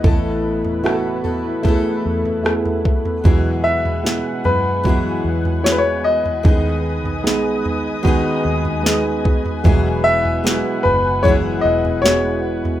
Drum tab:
SD |----r-------r---|----o-------o---|----o-------o---|----o-------o---|
FT |o--o--o-o--o-o-o|o--o--o-o--o---o|o--o--o-o--o---o|o--o--o-o--o---o|
BD |o-------o-----o-|o-------o-------|o-------o-----o-|o-------o-------|